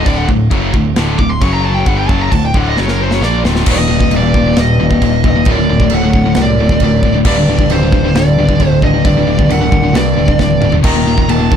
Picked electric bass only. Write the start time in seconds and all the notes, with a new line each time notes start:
0.06 D1
0.29 D1
0.51 F#1
0.74 D1
0.97 D1
1.19 D1
1.42 F#1
1.86 G1
2.09 F#1
2.32 D1
2.55 D1
2.78 F#1
3.22 A#1
3.44 D1
3.89 D#1
4.13 D#1
4.58 D#1
4.81 D#1
5.02 D#1
5.24 D#1
5.46 D1
5.70 D1
5.92 D1
6.13 D1
6.37 C2
6.58 D1
6.81 D1
7.25 D1
7.47 D1
7.69 D1
8.15 D1
8.38 D1
8.60 D1
8.82 D1
9.05 D1
9.27 D1
9.50 D1
9.72 D1
9.93 C2
10.15 D1
10.40 D1
10.84 D#1
11.06 D#1
11.28 D#1